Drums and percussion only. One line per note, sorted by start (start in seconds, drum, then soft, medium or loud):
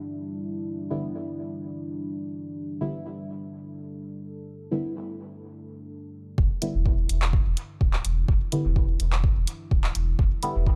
6.38 kick loud
6.62 closed hi-hat medium
6.86 kick loud
7.09 closed hi-hat medium
7.22 clap medium
7.33 kick loud
7.57 closed hi-hat medium
7.81 kick loud
7.93 clap medium
8.05 closed hi-hat medium
8.28 kick loud
8.52 closed hi-hat medium
8.76 kick loud
9.00 closed hi-hat medium
9.12 clap medium
9.24 kick loud
9.47 closed hi-hat medium
9.71 kick loud
9.84 clap medium
9.95 closed hi-hat medium
10.19 kick loud
10.43 closed hi-hat medium
10.67 kick loud